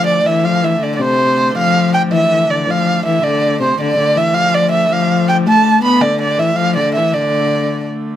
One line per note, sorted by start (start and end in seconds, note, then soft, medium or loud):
0.00 3.81 D3 medium
0.00 0.24 F3 medium
0.00 3.80 A3 medium
0.07 0.28 D5 medium
0.25 0.44 E3 medium
0.25 0.47 E5 medium
0.43 0.63 F3 medium
0.43 0.66 F5 medium
0.62 0.79 E3 medium
0.62 0.84 E5 medium
0.80 1.00 D3 medium
0.80 0.94 D5 medium
0.95 1.55 C3 medium
0.95 1.03 D5 medium
1.01 1.57 C5 medium
1.55 2.07 F3 medium
1.55 1.91 F5 medium
1.94 2.02 G5 medium
2.07 2.28 E3 medium
2.07 2.12 F3 medium
2.13 2.52 E5 loud
2.29 2.47 E3 medium
2.48 2.69 D3 medium
2.48 2.72 D5 medium
2.67 3.05 F3 medium
2.67 3.05 F5 loud
3.05 3.22 E3 medium
3.05 3.25 E5 medium
3.23 3.61 D3 medium
3.23 3.61 D5 medium
3.60 3.78 C3 medium
3.60 3.78 C5 medium
3.78 3.96 D3 medium
3.78 8.16 D3 medium
3.78 8.16 A3 medium
3.78 4.19 D5 medium
3.98 4.16 D3 medium
4.15 4.34 E3 medium
4.15 4.36 E5 medium
4.32 4.89 F3 medium
4.32 4.56 F5 loud
4.54 4.71 D5 medium
4.72 4.94 E5 medium
4.90 5.48 F3 loud
4.90 5.29 F5 loud
5.29 5.37 G5 medium
5.46 5.82 A3 medium
5.46 5.82 A5 loud
5.82 6.02 B3 medium
5.82 6.03 B5 loud
6.01 6.39 D3 medium
6.01 6.20 D5 loud
6.21 6.41 D5 loud
6.38 6.55 E3 medium
6.38 6.58 E5 medium
6.56 6.77 F3 medium
6.56 6.75 F5 loud
6.76 6.98 D3 medium
6.76 6.93 D5 medium
6.95 7.15 E3 medium
6.95 7.15 E5 medium
7.13 7.87 D3 medium
7.13 7.87 D5 medium